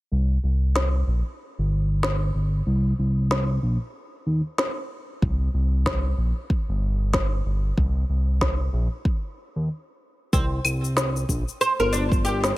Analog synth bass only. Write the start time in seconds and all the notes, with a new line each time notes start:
0.12 C2
0.44 C2
1.07 A#1
1.58 G1
2.35 G1
2.67 C2
2.99 C2
3.63 A#1
4.26 D#2
5.22 C2
5.54 C2
6.18 A#1
6.69 G1
7.46 G1
7.77 C2
8.09 C2
8.73 A#1
9.56 D#2
10.33 C2
10.65 C2
11.29 A#1
11.79 G1